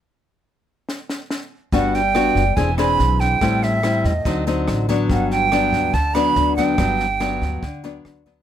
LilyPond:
<<
  \new Staff \with { instrumentName = "Flute" } { \time 4/4 \key g \major \tempo 4 = 142 r1 | fis''8 g''4. gis''8 b''4 g''8~ | g''8 e''4 ees''4 r4. | fis''8 g''4. a''8 b''4 g''8~ |
g''2. r4 | }
  \new Staff \with { instrumentName = "Nylon-string guitar" } { \time 4/4 \key g \major << { r1 | <b d' fis'>8 r8 <b d' fis'>8 r8 <c' d' gis'>8 <c' d' gis'>4. | <g c' e'>4 <g c' e'>8 r8 <fis c' ees'>8 <fis c' ees'>4 <fis b d'>8~ | <fis b d'>4 <fis b d'>4 r8 <fis b d'>4 <fis b d'>8 |
<fis b d'>8 r8 <fis b d'>4 r8 <fis b d'>4 <fis b d'>8 | } \\ { r1 | g2 e2 | a,2 d2 | g,2 d2 |
g,2 d2 | } >> }
  \new Staff \with { instrumentName = "Upright bass" } { \clef bass \time 4/4 \key g \major r1 | g,,4. fis,,8 e,,4 b,,4 | a,,4. e,8 d,4 a,,4 | g,,4. d,8 d,4 d,4 |
g,,4. d,8 d,4 d,4 | }
  \new DrumStaff \with { instrumentName = "Drums" } \drummode { \time 4/4 r4 r4 sn8 sn8 sn4 | <bd sn>8 sn8 <ss sn>8 <bd sn>8 <bd sn>8 <ss sn>8 sn8 <bd sn>8 | <bd ss sn>8 sn8 <ss sn>8 <bd sn>8 <bd sn>8 sn8 <ss sn>8 <bd sn>8 | <bd sn>8 sn8 <ss sn>8 <bd sn>8 <bd sn>8 <ss sn>8 sn8 <bd sn>8 |
<bd ss sn>8 sn8 <ss sn>8 <bd sn>8 <bd sn>8 sn8 <ss sn>8 <bd sn>8 | }
>>